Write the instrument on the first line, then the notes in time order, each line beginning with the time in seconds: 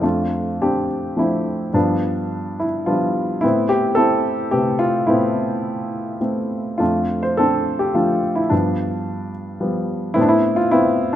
grand piano
0.01 F2 A3 D4 F4
0.62 C4 D4 G4
1.16 F3 A3 C4 D4 E4
1.74 G2 F3 B3 D4
2.60 E4
2.86 F3 G3 B3 D4 F4
3.41 A2 B3 C4 E4
3.69 G4
3.95 C4 E4 A4
4.51 C3 A3 G4 B4
4.79 F4
5.07 A2 B3 C4 E4
6.21 A3 B3 C4
6.78 F2 A3 D4 F4
7.23 C5
7.37 C4 D4 A4
7.79 G4
7.94 F3 A3 D4 F4
8.36 E4
8.49 G2 F3 B3 D4
9.60 F3 G3 B3
10.14 A2 B3 C4 E4
10.21 D4
10.29 E4
10.56 F4
10.71 B3 C4 E4